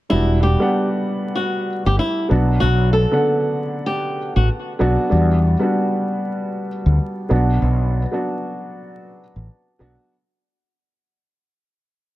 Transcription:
0.09 0.55 E1 loud
0.09 0.52 G3 medium
0.09 0.53 B3 medium
0.09 0.53 D4 medium
0.09 0.39 E4 loud
0.09 0.54 F#4 medium
0.43 0.89 G4 medium
0.59 1.67 G3 medium
0.59 1.67 B3 medium
0.59 1.68 D4 medium
0.59 1.68 F#5 medium
1.35 1.82 F#4 medium
1.86 1.98 G1 medium
1.86 1.98 G4 medium
1.99 2.27 E4 medium
2.29 2.58 B1 loud
2.29 2.98 F#3 medium
2.29 2.99 B3 medium
2.29 2.99 D4 medium
2.29 3.00 F#4 medium
2.60 3.05 B1 loud
2.60 2.89 F#4 loud
2.93 3.39 A4 medium
3.12 4.18 D3 medium
3.12 4.18 B3 medium
3.12 4.19 D4 medium
3.12 4.19 F#5 medium
3.86 4.32 G4 medium
4.36 4.48 A1 medium
4.36 4.48 F#4 medium
4.79 4.96 B1 medium
4.79 5.08 F#3 medium
4.79 5.08 B3 medium
4.79 5.08 D4 medium
4.79 5.09 F#4 loud
5.09 5.54 E2 loud
5.09 5.53 G3 medium
5.09 5.53 B3 medium
5.09 5.53 D4 medium
5.09 5.54 F#4 medium
5.60 6.67 G3 medium
5.60 6.67 B3 medium
5.60 6.68 D4 medium
5.60 6.68 F#4 medium
6.86 6.98 D2 medium
7.29 7.58 B1 medium
7.29 7.98 F#3 medium
7.29 7.99 B3 medium
7.29 7.99 D4 medium
7.29 8.00 F#4 medium
7.62 8.04 B1 loud
8.12 9.18 F#3 medium
8.12 9.18 B3 medium
8.12 9.19 D4 medium
8.12 9.19 F#4 medium
9.36 9.48 A1 medium
9.79 9.96 B1 medium
9.79 10.07 F#3 medium
9.79 10.08 B3 medium
9.79 10.08 D4 medium
9.79 10.09 F#4 loud

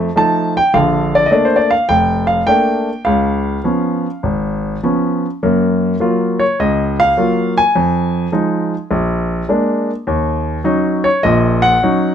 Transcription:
0.00 0.13 C6 medium
0.16 0.56 F3 soft
0.16 0.56 A3 soft
0.16 0.57 D#4 soft
0.16 0.53 A5 medium
0.57 0.75 G5 medium
0.74 1.24 A#1 medium
0.74 1.24 D3 medium
0.74 1.14 F5 medium
1.15 1.29 D5 medium
1.26 1.34 D#5 medium
1.31 1.72 A3 soft
1.31 1.72 A#3 soft
1.31 1.73 D4 medium
1.31 1.45 D5 medium
1.45 1.58 C5 medium
1.56 1.69 D5 medium
1.71 1.90 F5 medium
1.89 2.40 F1 medium
1.89 2.25 G5 medium
2.27 2.45 F5 medium
2.47 2.88 A3 soft
2.47 2.88 A#3 soft
2.47 2.88 D4 soft
2.47 3.07 G5 medium
3.05 3.56 C#2 medium
3.05 4.78 F5 medium
3.64 4.05 F3 soft
3.64 4.05 B3 soft
3.64 4.05 C#4 soft
4.23 4.75 G#1 medium
4.83 5.25 F3 soft
4.83 5.25 B3 soft
4.83 5.25 C#4 soft
5.43 5.93 F#2 medium
5.43 5.93 A#3 medium
6.00 6.41 F#3 soft
6.00 6.41 A#3 soft
6.00 6.42 F4 medium
6.39 6.59 C#5 medium
6.59 7.10 C#2 medium
6.59 6.96 D#5 medium
7.00 7.53 F5 loud
7.17 7.58 F#3 soft
7.17 7.58 A#3 soft
7.17 7.58 F4 soft
7.57 8.30 G#5 medium
7.75 8.25 F2 medium
8.32 8.73 F3 soft
8.32 8.73 G#3 soft
8.32 8.74 D#4 medium
8.91 9.41 A#1 medium
9.49 9.90 G#3 soft
9.49 9.90 A#3 soft
9.49 9.90 D4 medium
10.07 10.57 D#2 medium
10.64 11.06 F#3 medium
10.64 11.06 C#4 soft
10.64 11.06 D#4 medium
11.04 11.22 C#5 medium
11.23 11.75 A#1 medium
11.23 11.75 A#2 medium
11.23 11.64 D#5 medium
11.62 12.15 F#5 medium
11.83 12.15 F#3 medium
11.83 12.15 C#4 soft
11.83 12.15 D#4 medium

